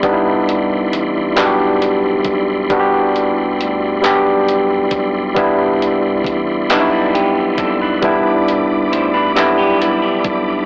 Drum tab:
HH |xxxxxx|xxxxxx|xxxxxx|xxxxxx|
CP |---x--|---x--|---x--|---x--|
BD |o----o|o----o|o-o--o|o----o|